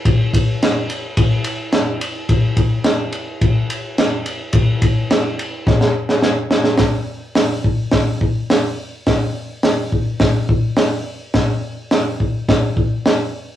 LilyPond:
\new DrumStaff \with { instrumentName = "Drums" } \drummode { \time 4/4 \tempo 4 = 106 <bd cymr>8 <bd cymr>8 <cymr sn>8 cymr8 <bd cymr>8 cymr8 <cymr sn>8 cymr8 | <bd cymr>8 <bd cymr>8 <cymr sn>8 cymr8 <bd cymr>8 cymr8 <cymr sn>8 cymr8 | <bd cymr>8 <bd cymr>8 <cymr sn>8 cymr8 <bd sn>16 sn8 sn16 sn8 sn16 sn16 | <hho bd sn>4 <hho sn>8 bd8 <hho bd sn>8 bd8 <hho sn>4 |
<hho bd sn>4 <hho sn>8 bd8 <hho bd sn>8 bd8 <hho sn>4 | <hho bd sn>4 <hho sn>8 bd8 <hho bd sn>8 bd8 <hho sn>4 | }